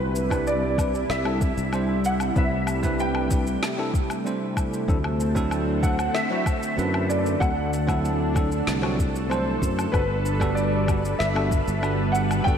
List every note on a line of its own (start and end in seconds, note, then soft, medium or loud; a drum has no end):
0.00 1.03 C2 medium
0.00 4.84 C3 medium
0.00 4.85 G3 medium
0.00 4.85 E4 medium
0.00 0.48 B4 medium
0.16 shaker medium
0.30 0.74 G3 medium
0.30 0.74 C4 medium
0.30 0.75 D4 medium
0.30 0.75 E4 medium
0.30 0.75 B4 loud
0.30 kick medium
0.30 low woodblock medium
0.30 shaker soft
0.47 1.12 D5 medium
0.47 shaker soft
0.78 0.91 G3 medium
0.78 0.92 C4 medium
0.78 0.92 D4 medium
0.78 0.92 E4 medium
0.78 0.92 B4 medium
0.78 kick loud
0.78 low woodblock medium
0.78 shaker medium
0.95 shaker soft
1.10 1.50 C2 medium
1.10 2.01 E5 medium
1.10 snare medium
1.10 shaker soft
1.25 1.38 G3 medium
1.25 1.38 C4 medium
1.25 1.39 D4 medium
1.25 1.39 E4 medium
1.25 1.39 A4 medium
1.25 low woodblock medium
1.41 kick loud
1.41 shaker medium
1.57 2.29 C2 medium
1.57 shaker soft
1.72 2.32 G3 medium
1.72 2.32 C4 medium
1.72 2.33 D4 medium
1.72 2.33 E4 medium
1.72 2.33 C5 medium
1.72 low woodblock medium
1.72 shaker soft
2.05 2.13 F#5 medium
2.05 shaker medium
2.20 low woodblock medium
2.20 shaker soft
2.36 3.56 C2 medium
2.36 2.44 G3 medium
2.36 9.90 A3 medium
2.36 2.44 C4 medium
2.36 2.44 D4 medium
2.36 2.45 E4 medium
2.36 2.45 B4 loud
2.36 3.02 E5 loud
2.36 kick loud
2.36 shaker soft
2.67 low woodblock medium
2.67 shaker medium
2.83 3.27 G3 loud
2.83 3.27 C4 medium
2.83 3.27 D4 medium
2.83 3.27 E4 medium
2.83 3.28 B4 loud
2.83 kick medium
2.83 shaker soft
2.99 4.54 G5 medium
2.99 shaker soft
3.15 low woodblock medium
3.30 3.44 G3 medium
3.30 3.44 C4 medium
3.30 3.44 D4 medium
3.30 3.44 E4 medium
3.30 3.45 B4 medium
3.30 kick loud
3.30 shaker medium
3.47 shaker soft
3.63 snare medium
3.63 low woodblock medium
3.63 shaker soft
3.78 3.91 G3 medium
3.78 3.91 C4 medium
3.78 3.91 D4 medium
3.78 3.92 E4 medium
3.78 3.92 A4 loud
3.94 kick medium
3.94 shaker medium
4.10 low woodblock medium
4.10 shaker soft
4.25 4.85 G3 medium
4.25 4.85 C4 medium
4.25 4.85 D4 medium
4.25 4.85 E4 medium
4.25 4.85 C5 medium
4.25 shaker soft
4.57 kick medium
4.57 low woodblock medium
4.57 shaker medium
4.74 shaker soft
4.88 6.08 D2 medium
4.88 9.90 D3 medium
4.88 4.97 F#3 medium
4.88 4.97 C4 medium
4.88 7.39 C4 medium
4.88 4.97 D4 medium
4.88 4.97 E4 medium
4.88 12.58 A4 medium
4.88 4.97 A4 loud
4.88 kick loud
4.88 shaker soft
5.04 low woodblock medium
5.20 shaker medium
5.35 5.79 F#3 medium
5.35 5.79 C4 medium
5.35 5.79 D4 medium
5.35 5.80 E4 medium
5.35 5.80 A4 loud
5.35 kick medium
5.35 shaker soft
5.51 low woodblock medium
5.51 shaker soft
5.82 5.96 F#3 medium
5.82 5.96 C4 medium
5.82 5.96 D4 medium
5.82 5.97 E4 medium
5.82 5.97 A4 medium
5.82 6.16 F#5 loud
5.82 kick loud
5.82 shaker medium
5.99 low woodblock medium
5.99 shaker soft
6.14 7.12 E5 loud
6.14 snare medium
6.14 shaker soft
6.30 6.44 F#3 medium
6.30 6.44 C4 medium
6.30 6.44 D4 medium
6.30 6.44 E4 medium
6.30 6.45 F#4 loud
6.46 kick loud
6.46 low woodblock medium
6.46 shaker medium
6.63 shaker soft
6.77 7.34 F#2 medium
6.77 7.37 F#3 medium
6.77 7.37 C4 medium
6.77 7.37 D4 medium
6.77 7.38 E4 medium
6.77 7.38 B4 medium
6.77 shaker soft
6.94 low woodblock medium
7.09 7.42 D5 medium
7.09 shaker medium
7.26 shaker soft
7.40 8.61 D2 medium
7.40 7.49 F#3 medium
7.40 7.49 C4 medium
7.40 7.50 D4 medium
7.40 9.91 D4 medium
7.40 7.50 E4 medium
7.40 7.50 A4 loud
7.40 8.00 F#5 medium
7.40 kick loud
7.40 low woodblock medium
7.40 shaker soft
7.73 shaker medium
7.87 8.31 F#3 medium
7.87 8.32 C4 medium
7.87 8.32 D4 medium
7.87 8.32 E4 medium
7.87 8.32 A4 loud
7.87 kick medium
7.87 low woodblock medium
7.87 shaker soft
8.05 shaker soft
8.34 8.48 F#3 medium
8.34 8.49 C4 medium
8.34 8.49 D4 medium
8.34 8.49 E4 medium
8.34 8.50 A4 medium
8.34 kick loud
8.34 low woodblock medium
8.34 shaker medium
8.52 shaker soft
8.67 9.55 C2 medium
8.67 snare medium
8.67 shaker soft
8.82 8.96 F#3 medium
8.82 8.96 C4 medium
8.82 8.96 D4 medium
8.82 8.96 E4 medium
8.82 8.97 F#4 loud
8.82 low woodblock medium
8.99 kick loud
8.99 shaker medium
9.16 shaker soft
9.29 9.89 F#3 medium
9.29 9.90 C4 medium
9.29 9.90 D4 medium
9.29 9.90 E4 medium
9.29 9.95 C5 medium
9.29 9.90 C5 medium
9.29 low woodblock medium
9.29 shaker soft
9.62 9.85 F#2 medium
9.62 kick medium
9.62 shaker medium
9.79 low woodblock medium
9.79 shaker soft
9.92 11.13 G1 medium
9.92 10.01 G3 medium
9.92 12.58 G3 medium
9.92 10.02 B3 medium
9.92 10.02 D4 medium
9.92 12.58 D4 medium
9.92 10.02 F#4 medium
9.92 10.03 A4 loud
9.92 10.58 B4 medium
9.92 12.58 B4 medium
9.92 kick loud
9.92 low woodblock medium
9.92 shaker soft
10.26 shaker medium
10.40 10.84 G3 loud
10.40 10.84 B3 medium
10.40 10.85 D4 medium
10.40 10.85 F#4 medium
10.40 10.85 A4 loud
10.40 kick medium
10.40 low woodblock medium
10.40 shaker soft
10.55 11.21 D5 medium
10.55 shaker soft
10.87 11.01 G3 medium
10.87 11.01 B3 medium
10.87 11.02 D4 medium
10.87 11.02 F#4 medium
10.87 11.02 A4 medium
10.87 kick loud
10.87 low woodblock medium
10.87 shaker medium
11.05 shaker soft
11.19 11.61 G1 medium
11.19 12.17 E5 medium
11.19 snare medium
11.19 shaker soft
11.34 11.48 G3 medium
11.34 11.49 B3 medium
11.34 11.49 D4 medium
11.34 11.49 F#4 medium
11.34 11.49 A4 loud
11.34 low woodblock medium
11.51 kick loud
11.51 shaker medium
11.68 12.40 G1 medium
11.68 shaker soft
11.82 12.42 G3 medium
11.82 12.42 B3 medium
11.82 12.42 D4 medium
11.82 12.43 F#4 medium
11.82 12.43 B4 medium
11.82 low woodblock medium
11.82 shaker soft
12.12 12.19 F#5 medium
12.12 shaker medium
12.31 low woodblock medium
12.31 shaker soft
12.44 12.58 G1 medium
12.44 12.54 G3 medium
12.44 12.55 B3 medium
12.44 12.55 D4 medium
12.44 12.55 F#4 medium
12.44 12.55 A4 medium
12.44 12.58 G5 loud
12.44 kick loud
12.44 shaker soft